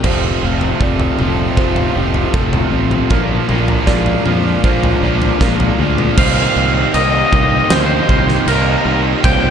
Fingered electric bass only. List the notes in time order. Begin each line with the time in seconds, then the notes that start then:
0.04 F1
0.43 F1
0.80 F1
1.19 F1
1.57 F1
1.97 F1
2.34 F1
2.72 A1
3.10 A#1
3.49 A#1
3.87 A#1
4.26 F2
4.64 A#1
5.03 A#1
5.41 A#1
5.79 D2
6.17 C2
6.56 C2
6.94 C2
7.32 C2
7.70 D2
8.09 C2
8.47 C2
8.85 C2
9.24 C2